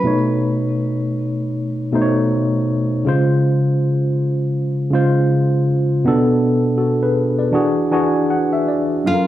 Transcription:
0, 0, Header, 1, 3, 480
1, 0, Start_track
1, 0, Tempo, 750000
1, 31, Time_signature, 4, 2, 24, 8
1, 5933, End_track
2, 0, Start_track
2, 0, Title_t, "Nylon-string guitar"
2, 0, Program_c, 0, 24
2, 0, Note_on_c, 0, 71, 90
2, 1206, Note_off_c, 0, 71, 0
2, 5806, Note_on_c, 0, 65, 85
2, 5933, Note_off_c, 0, 65, 0
2, 5933, End_track
3, 0, Start_track
3, 0, Title_t, "Tine electric piano"
3, 0, Program_c, 1, 4
3, 0, Control_c, 1, 64, 127
3, 21, Note_on_c, 1, 47, 78
3, 29, Note_on_c, 1, 57, 61
3, 35, Note_on_c, 1, 63, 64
3, 39, Control_c, 1, 64, 0
3, 46, Note_on_c, 1, 73, 78
3, 159, Control_c, 1, 64, 127
3, 660, Note_off_c, 1, 47, 0
3, 663, Note_off_c, 1, 57, 0
3, 667, Note_off_c, 1, 63, 0
3, 672, Note_off_c, 1, 73, 0
3, 1231, Note_on_c, 1, 47, 80
3, 1234, Note_on_c, 1, 57, 72
3, 1244, Note_on_c, 1, 63, 76
3, 1250, Note_on_c, 1, 72, 79
3, 1290, Note_off_c, 1, 72, 0
3, 1291, Note_on_c, 1, 73, 85
3, 1694, Note_off_c, 1, 47, 0
3, 1696, Note_off_c, 1, 57, 0
3, 1701, Note_off_c, 1, 63, 0
3, 1725, Note_off_c, 1, 73, 0
3, 1951, Note_on_c, 1, 49, 90
3, 1958, Control_c, 1, 64, 0
3, 1959, Note_on_c, 1, 56, 71
3, 1966, Note_on_c, 1, 65, 80
3, 1975, Note_on_c, 1, 72, 90
3, 2061, Control_c, 1, 64, 127
3, 2584, Note_off_c, 1, 49, 0
3, 2589, Note_off_c, 1, 56, 0
3, 2592, Note_off_c, 1, 65, 0
3, 2596, Note_off_c, 1, 72, 0
3, 3142, Note_on_c, 1, 49, 81
3, 3153, Note_on_c, 1, 56, 72
3, 3157, Note_on_c, 1, 65, 86
3, 3168, Note_on_c, 1, 72, 92
3, 3610, Note_off_c, 1, 49, 0
3, 3616, Note_off_c, 1, 56, 0
3, 3618, Note_off_c, 1, 65, 0
3, 3623, Note_off_c, 1, 72, 0
3, 3868, Note_on_c, 1, 47, 87
3, 3876, Note_on_c, 1, 59, 84
3, 3878, Control_c, 1, 64, 0
3, 3883, Note_on_c, 1, 62, 81
3, 3890, Note_on_c, 1, 69, 91
3, 3989, Control_c, 1, 64, 127
3, 4329, Note_off_c, 1, 69, 0
3, 4336, Note_on_c, 1, 69, 52
3, 4338, Note_on_c, 1, 66, 54
3, 4479, Note_off_c, 1, 69, 0
3, 4480, Note_off_c, 1, 66, 0
3, 4497, Note_on_c, 1, 71, 70
3, 4501, Note_on_c, 1, 68, 61
3, 4503, Note_off_c, 1, 47, 0
3, 4507, Note_off_c, 1, 59, 0
3, 4511, Note_off_c, 1, 62, 0
3, 4723, Note_off_c, 1, 71, 0
3, 4725, Note_off_c, 1, 68, 0
3, 4728, Note_on_c, 1, 74, 57
3, 4734, Note_on_c, 1, 71, 47
3, 4810, Note_on_c, 1, 52, 75
3, 4817, Note_on_c, 1, 62, 85
3, 4825, Note_on_c, 1, 66, 81
3, 4832, Note_on_c, 1, 68, 93
3, 4838, Control_c, 1, 64, 0
3, 4958, Note_off_c, 1, 74, 0
3, 4958, Control_c, 1, 64, 127
3, 4961, Note_off_c, 1, 71, 0
3, 5022, Note_off_c, 1, 52, 0
3, 5025, Note_off_c, 1, 62, 0
3, 5029, Note_off_c, 1, 66, 0
3, 5032, Note_off_c, 1, 68, 0
3, 5062, Note_on_c, 1, 52, 75
3, 5068, Note_on_c, 1, 62, 80
3, 5073, Note_on_c, 1, 80, 69
3, 5076, Note_on_c, 1, 66, 81
3, 5082, Note_on_c, 1, 68, 86
3, 5295, Note_off_c, 1, 80, 0
3, 5314, Note_on_c, 1, 78, 65
3, 5445, Note_off_c, 1, 78, 0
3, 5458, Note_on_c, 1, 76, 67
3, 5530, Note_off_c, 1, 52, 0
3, 5533, Note_off_c, 1, 62, 0
3, 5537, Note_off_c, 1, 66, 0
3, 5540, Note_off_c, 1, 68, 0
3, 5546, Note_off_c, 1, 76, 0
3, 5557, Note_on_c, 1, 74, 63
3, 5777, Note_off_c, 1, 74, 0
3, 5786, Note_on_c, 1, 54, 68
3, 5792, Note_on_c, 1, 61, 61
3, 5797, Control_c, 1, 64, 0
3, 5801, Note_on_c, 1, 77, 62
3, 5809, Note_on_c, 1, 69, 55
3, 5849, Note_off_c, 1, 69, 0
3, 5849, Note_on_c, 1, 70, 69
3, 5926, Control_c, 1, 64, 127
3, 5933, Note_off_c, 1, 54, 0
3, 5933, Note_off_c, 1, 61, 0
3, 5933, Note_off_c, 1, 70, 0
3, 5933, Note_off_c, 1, 77, 0
3, 5933, End_track
0, 0, End_of_file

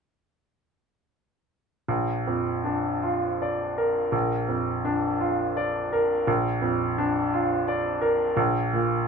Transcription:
0, 0, Header, 1, 2, 480
1, 0, Start_track
1, 0, Key_signature, -2, "major"
1, 0, Tempo, 762389
1, 1182, Time_signature, 3, 2, 24, 8
1, 2144, Tempo, 722892
1, 3584, Tempo, 706714
1, 5963, End_track
2, 0, Start_track
2, 0, Title_t, "Upright piano"
2, 0, Program_c, 0, 0
2, 1186, Note_on_c, 0, 34, 46
2, 1288, Control_c, 0, 64, 127
2, 1429, Note_on_c, 0, 41, 33
2, 1665, Note_on_c, 0, 62, 33
2, 1812, Note_off_c, 0, 41, 0
2, 1906, Note_on_c, 0, 65, 39
2, 2050, Note_off_c, 0, 62, 0
2, 2153, Note_on_c, 0, 74, 38
2, 2291, Note_off_c, 0, 65, 0
2, 2392, Note_on_c, 0, 70, 40
2, 2534, Note_off_c, 0, 74, 0
2, 2600, Note_off_c, 0, 34, 0
2, 2620, Note_on_c, 0, 34, 45
2, 2637, Control_c, 0, 64, 0
2, 2736, Control_c, 0, 64, 127
2, 2770, Note_off_c, 0, 70, 0
2, 2860, Note_on_c, 0, 41, 35
2, 3101, Note_on_c, 0, 62, 41
2, 3245, Note_off_c, 0, 41, 0
2, 3339, Note_on_c, 0, 65, 39
2, 3487, Note_off_c, 0, 62, 0
2, 3580, Note_on_c, 0, 74, 46
2, 3724, Note_off_c, 0, 65, 0
2, 3823, Note_on_c, 0, 70, 47
2, 3962, Note_off_c, 0, 74, 0
2, 4028, Note_off_c, 0, 34, 0
2, 4058, Note_off_c, 0, 70, 0
2, 4060, Note_on_c, 0, 34, 51
2, 4070, Control_c, 0, 64, 0
2, 4182, Control_c, 0, 64, 127
2, 4292, Note_on_c, 0, 41, 42
2, 4539, Note_on_c, 0, 62, 44
2, 4685, Note_off_c, 0, 41, 0
2, 4780, Note_on_c, 0, 65, 45
2, 4924, Note_off_c, 0, 62, 0
2, 5014, Note_on_c, 0, 74, 48
2, 5157, Note_off_c, 0, 65, 0
2, 5242, Note_on_c, 0, 70, 45
2, 5392, Note_off_c, 0, 74, 0
2, 5464, Note_off_c, 0, 34, 0
2, 5481, Note_on_c, 0, 34, 59
2, 5485, Note_off_c, 0, 70, 0
2, 5501, Control_c, 0, 64, 0
2, 5593, Control_c, 0, 64, 127
2, 5729, Note_on_c, 0, 46, 40
2, 5963, Note_off_c, 0, 34, 0
2, 5963, Note_off_c, 0, 46, 0
2, 5963, End_track
0, 0, End_of_file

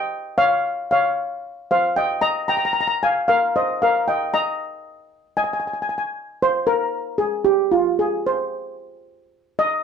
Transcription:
0, 0, Header, 1, 2, 480
1, 0, Start_track
1, 0, Tempo, 527241
1, 99, Time_signature, 4, 2, 24, 8
1, 8953, End_track
2, 0, Start_track
2, 0, Title_t, "Steel pan"
2, 0, Program_c, 0, 114
2, 0, Note_on_c, 0, 75, 67
2, 0, Note_on_c, 0, 79, 93
2, 305, Note_off_c, 0, 75, 0
2, 343, Note_on_c, 0, 77, 94
2, 347, Note_on_c, 0, 73, 76
2, 351, Note_off_c, 0, 79, 0
2, 789, Note_off_c, 0, 73, 0
2, 818, Note_off_c, 0, 77, 0
2, 829, Note_on_c, 0, 77, 87
2, 840, Note_on_c, 0, 73, 67
2, 1513, Note_off_c, 0, 73, 0
2, 1545, Note_off_c, 0, 77, 0
2, 1556, Note_on_c, 0, 77, 82
2, 1561, Note_on_c, 0, 72, 71
2, 1660, Note_off_c, 0, 77, 0
2, 1663, Note_off_c, 0, 72, 0
2, 1788, Note_on_c, 0, 79, 83
2, 1798, Note_on_c, 0, 75, 65
2, 2009, Note_off_c, 0, 75, 0
2, 2016, Note_on_c, 0, 82, 103
2, 2020, Note_on_c, 0, 75, 80
2, 2030, Note_off_c, 0, 79, 0
2, 2242, Note_off_c, 0, 75, 0
2, 2248, Note_off_c, 0, 82, 0
2, 2259, Note_on_c, 0, 82, 94
2, 2269, Note_on_c, 0, 79, 74
2, 2328, Note_off_c, 0, 79, 0
2, 2329, Note_off_c, 0, 82, 0
2, 2341, Note_on_c, 0, 82, 71
2, 2402, Note_off_c, 0, 82, 0
2, 2413, Note_on_c, 0, 82, 85
2, 2473, Note_off_c, 0, 82, 0
2, 2487, Note_on_c, 0, 82, 73
2, 2545, Note_off_c, 0, 82, 0
2, 2555, Note_on_c, 0, 82, 77
2, 2607, Note_off_c, 0, 82, 0
2, 2618, Note_on_c, 0, 82, 74
2, 2679, Note_off_c, 0, 82, 0
2, 2757, Note_on_c, 0, 80, 88
2, 2765, Note_on_c, 0, 77, 62
2, 2975, Note_off_c, 0, 77, 0
2, 2987, Note_on_c, 0, 77, 91
2, 2993, Note_off_c, 0, 80, 0
2, 2997, Note_on_c, 0, 70, 69
2, 3211, Note_off_c, 0, 70, 0
2, 3228, Note_off_c, 0, 77, 0
2, 3239, Note_on_c, 0, 72, 65
2, 3239, Note_on_c, 0, 75, 78
2, 3451, Note_off_c, 0, 72, 0
2, 3474, Note_off_c, 0, 75, 0
2, 3477, Note_on_c, 0, 77, 80
2, 3486, Note_on_c, 0, 70, 72
2, 3695, Note_off_c, 0, 70, 0
2, 3712, Note_on_c, 0, 79, 81
2, 3713, Note_off_c, 0, 77, 0
2, 3719, Note_on_c, 0, 75, 64
2, 3931, Note_off_c, 0, 75, 0
2, 3947, Note_on_c, 0, 82, 92
2, 3950, Note_off_c, 0, 79, 0
2, 3952, Note_on_c, 0, 75, 77
2, 4866, Note_off_c, 0, 75, 0
2, 4887, Note_on_c, 0, 80, 82
2, 4893, Note_on_c, 0, 75, 58
2, 4929, Note_off_c, 0, 82, 0
2, 4942, Note_off_c, 0, 80, 0
2, 4953, Note_on_c, 0, 80, 53
2, 4958, Note_off_c, 0, 75, 0
2, 5022, Note_off_c, 0, 80, 0
2, 5037, Note_on_c, 0, 80, 65
2, 5085, Note_off_c, 0, 80, 0
2, 5096, Note_on_c, 0, 80, 51
2, 5153, Note_off_c, 0, 80, 0
2, 5164, Note_on_c, 0, 80, 50
2, 5210, Note_off_c, 0, 80, 0
2, 5221, Note_on_c, 0, 80, 47
2, 5289, Note_off_c, 0, 80, 0
2, 5300, Note_on_c, 0, 80, 58
2, 5353, Note_off_c, 0, 80, 0
2, 5364, Note_on_c, 0, 80, 55
2, 5433, Note_off_c, 0, 80, 0
2, 5444, Note_on_c, 0, 80, 61
2, 5507, Note_off_c, 0, 80, 0
2, 5849, Note_on_c, 0, 72, 103
2, 5958, Note_off_c, 0, 72, 0
2, 6070, Note_on_c, 0, 70, 96
2, 6538, Note_on_c, 0, 68, 80
2, 6578, Note_off_c, 0, 70, 0
2, 6778, Note_on_c, 0, 67, 84
2, 6805, Note_off_c, 0, 68, 0
2, 7024, Note_on_c, 0, 65, 77
2, 7045, Note_off_c, 0, 67, 0
2, 7139, Note_off_c, 0, 65, 0
2, 7274, Note_on_c, 0, 68, 83
2, 7508, Note_off_c, 0, 68, 0
2, 7525, Note_on_c, 0, 72, 72
2, 7978, Note_off_c, 0, 72, 0
2, 8729, Note_on_c, 0, 75, 98
2, 8953, Note_off_c, 0, 75, 0
2, 8953, End_track
0, 0, End_of_file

